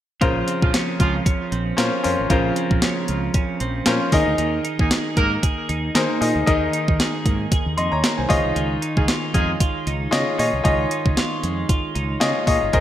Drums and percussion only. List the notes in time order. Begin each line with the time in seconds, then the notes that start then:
0.21 kick, closed hi-hat
0.48 closed hi-hat
0.62 kick
0.74 snare, closed hi-hat
1.00 kick, closed hi-hat
1.26 kick, closed hi-hat
1.52 closed hi-hat
1.78 snare, closed hi-hat
2.04 open hi-hat
2.30 kick, closed hi-hat
2.56 closed hi-hat
2.71 kick
2.82 snare, closed hi-hat
3.08 closed hi-hat
3.34 kick, closed hi-hat
3.60 closed hi-hat
3.86 snare, closed hi-hat
4.12 kick, open hi-hat
4.38 closed hi-hat
4.65 closed hi-hat
4.79 kick
4.91 snare, closed hi-hat
5.17 kick, closed hi-hat
5.43 kick, closed hi-hat
5.69 closed hi-hat
5.95 snare, closed hi-hat
6.22 open hi-hat
6.47 kick, closed hi-hat
6.73 closed hi-hat
6.88 kick
7.00 snare, closed hi-hat
7.26 kick, closed hi-hat
7.52 kick, closed hi-hat
7.78 closed hi-hat
8.04 snare, closed hi-hat
8.30 kick, open hi-hat
8.56 closed hi-hat
8.82 closed hi-hat
8.97 kick
9.08 snare, closed hi-hat
9.34 kick, closed hi-hat
9.60 kick, closed hi-hat
9.87 closed hi-hat
10.13 snare, closed hi-hat
10.39 open hi-hat
10.65 kick, closed hi-hat
10.91 closed hi-hat
11.06 kick
11.17 snare, closed hi-hat
11.44 closed hi-hat
11.69 kick, closed hi-hat
11.96 closed hi-hat
12.21 snare, closed hi-hat
12.47 kick, open hi-hat
12.73 kick, closed hi-hat